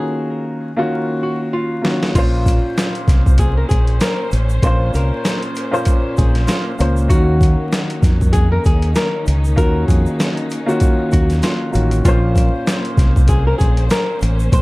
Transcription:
Already playing: D#3 A#3 C#4 F4 F#4
0.00 G#4
0.76 D#3 A#3 C#4 F4 F#4
1.23 F#4
1.53 F4
1.81 D#3 A#3 C#4 F4 F#4, snare
2.03 snare
2.15 A#1 A#2 A#3 C#4 F4 C5, kick, closed hi-hat, crash, shaker
2.46 kick, closed hi-hat, shaker
2.78 snare, closed hi-hat, shaker
2.95 closed hi-hat
3.08 C2, kick, snare, closed hi-hat, shaker
3.26 kick, shaker
3.38 G#4, kick, closed hi-hat, shaker
3.57 A#4
3.69 A#1 G#4, kick, closed hi-hat, shaker
3.87 closed hi-hat
4.00 A#4, snare, closed hi-hat, shaker
4.31 A1, closed hi-hat, shaker
4.49 shaker
4.63 A#1 A#2 A#3 C#4 F4 C5, kick, closed hi-hat, shaker
4.94 C2 A#4, closed hi-hat, shaker
5.25 snare, closed hi-hat, shaker
5.43 closed hi-hat
5.55 closed hi-hat, shaker
5.71 A#2 A#3 C#4 F4 C5, shaker
5.85 kick, closed hi-hat, shaker
6.17 A#1 G#4, kick, closed hi-hat, shaker
6.35 snare, closed hi-hat
6.47 F4, snare, closed hi-hat, shaker
6.79 C#2 A#2 A#3 C#4 F4 C5, closed hi-hat, shaker
6.97 shaker
7.08 D#2 D#3 A#3 C#4 D#4 F#4 F5, kick, closed hi-hat, shaker
7.41 kick, closed hi-hat, shaker
7.72 snare, closed hi-hat, shaker
7.90 closed hi-hat
8.03 F2, kick, snare, closed hi-hat, shaker
8.21 kick, shaker
8.33 G#4, kick, closed hi-hat, shaker
8.52 A#4
8.64 D#2 G#4, kick, closed hi-hat, shaker
8.82 closed hi-hat
8.95 A#4, snare, closed hi-hat, shaker
9.26 C#2, closed hi-hat, shaker
9.44 shaker
9.56 D#2 D#3 A#3 C#4 F4 F#4 A#4, kick, closed hi-hat, shaker
9.88 F2 G#4, kick, closed hi-hat, shaker
10.06 shaker
10.20 snare, closed hi-hat, shaker
10.37 closed hi-hat
10.50 closed hi-hat, shaker
10.66 D#3 A#3 C#4 F4 F#4, shaker
10.80 kick, closed hi-hat, shaker
11.12 D#2 F#4, kick, closed hi-hat, shaker
11.30 snare, closed hi-hat, shaker
11.42 F4, snare, closed hi-hat, shaker
11.71 A1 D#3 A#3 C#4 F4 F#4, shaker
11.75 closed hi-hat
11.91 closed hi-hat, shaker
12.05 A#1 A#2 A#3 C#4 F4 C5, kick, closed hi-hat, shaker
12.36 kick, closed hi-hat, shaker
12.67 snare, closed hi-hat, shaker
12.85 closed hi-hat
12.97 C2, kick, snare, closed hi-hat, shaker
13.16 kick, shaker
13.28 G#4, kick, closed hi-hat, shaker
13.47 A#4
13.58 A#1 G#4, kick, closed hi-hat, shaker
13.77 closed hi-hat
13.90 A#4, snare, closed hi-hat, shaker
14.21 A1, closed hi-hat, shaker
14.39 shaker
14.52 A#1 C5, kick, closed hi-hat, shaker

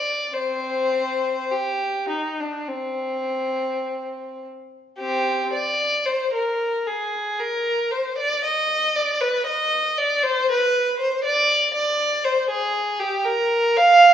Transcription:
Already playing: D5
0.33 C4 C5
1.51 G4
2.09 D#4
2.40 D4
2.69 C4
4.99 C4 G4
5.53 D5
6.06 C5
6.34 A#4
6.87 G#4
7.40 A#4
7.91 C5
8.18 D5
8.44 D#5
8.96 D5
9.21 B4
9.47 D#5
9.98 D5
10.23 C5
10.51 B4
10.99 C5
11.24 D5
11.74 D5
12.24 C5
12.50 G#4
13.00 G4
13.25 A#4
13.77 F5

